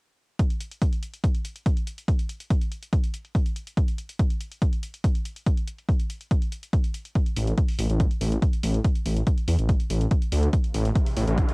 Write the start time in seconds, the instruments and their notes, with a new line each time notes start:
0.39 kick, closed hi-hat
0.50 closed hi-hat
0.60 closed hi-hat
0.71 closed hi-hat
0.82 kick, closed hi-hat
0.92 closed hi-hat
1.03 closed hi-hat
1.14 closed hi-hat
1.24 kick, closed hi-hat
1.35 closed hi-hat
1.45 closed hi-hat
1.56 closed hi-hat
1.66 kick, closed hi-hat
1.77 closed hi-hat
1.87 closed hi-hat
1.98 closed hi-hat
2.08 kick, closed hi-hat
2.19 closed hi-hat
2.29 closed hi-hat
2.40 closed hi-hat
2.51 kick, closed hi-hat
2.62 closed hi-hat
2.72 closed hi-hat
2.83 closed hi-hat
2.93 kick, closed hi-hat
3.04 closed hi-hat
3.14 closed hi-hat
3.25 closed hi-hat
3.35 kick, closed hi-hat
3.46 closed hi-hat
3.56 closed hi-hat
3.67 closed hi-hat
3.77 kick, closed hi-hat
3.88 closed hi-hat
3.98 closed hi-hat
4.09 closed hi-hat
4.20 kick, closed hi-hat
4.30 closed hi-hat
4.41 closed hi-hat
4.52 closed hi-hat
4.62 kick, closed hi-hat
4.73 closed hi-hat
4.83 closed hi-hat
4.94 closed hi-hat
5.04 kick, closed hi-hat
5.15 closed hi-hat
5.25 closed hi-hat
5.36 closed hi-hat
5.46 kick, closed hi-hat
5.57 closed hi-hat
5.67 closed hi-hat
5.78 closed hi-hat
5.89 kick, closed hi-hat
6.00 closed hi-hat
6.10 closed hi-hat
6.21 closed hi-hat
6.31 kick, closed hi-hat
6.42 closed hi-hat
6.52 closed hi-hat
6.63 closed hi-hat
6.73 kick, closed hi-hat
6.84 closed hi-hat
6.94 closed hi-hat
7.05 closed hi-hat
7.15 kick, closed hi-hat
7.26 closed hi-hat
7.36 detuned saw bass A1, open hi-hat
7.47 closed hi-hat
7.58 kick, closed hi-hat
7.68 open hi-hat
7.79 detuned saw bass A1, open hi-hat
7.90 detuned saw bass A1, closed hi-hat
8.00 kick, closed hi-hat
8.11 closed hi-hat
8.21 detuned saw bass A1, open hi-hat
8.32 closed hi-hat
8.42 kick, closed hi-hat
8.53 closed hi-hat
8.63 detuned saw bass A1, open hi-hat
8.74 closed hi-hat
8.84 kick, closed hi-hat
8.95 closed hi-hat
9.05 detuned saw bass A1, open hi-hat
9.16 closed hi-hat
9.27 kick, closed hi-hat
9.38 closed hi-hat
9.48 detuned saw bass E2, open hi-hat
9.59 detuned saw bass A1, closed hi-hat
9.69 kick, closed hi-hat
9.80 closed hi-hat
9.90 detuned saw bass A1, open hi-hat
10.01 closed hi-hat
10.11 kick, closed hi-hat
10.22 closed hi-hat
10.32 detuned saw bass D2, open hi-hat
10.43 closed hi-hat
10.53 kick, closed hi-hat, riser
10.64 closed hi-hat
10.74 detuned saw bass A1, open hi-hat
10.85 closed hi-hat
10.96 kick, closed hi-hat
11.07 open hi-hat
11.17 detuned saw bass A1, open hi-hat
11.28 detuned saw bass A1, closed hi-hat
11.38 kick, closed hi-hat
11.49 closed hi-hat